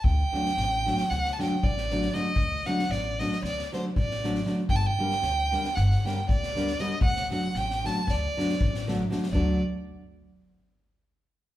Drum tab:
SD |--ooo-ooooo--oooo-|--ooo-ooooo--oooo-|---oo-ooooo--oooo-|-oo-ooo-o-oo-oo-oo|
BD |o-----------o-----|o-----------o-----|o-----------o-----|o-------o---o-----|

SD |------------------|
BD |o-----------------|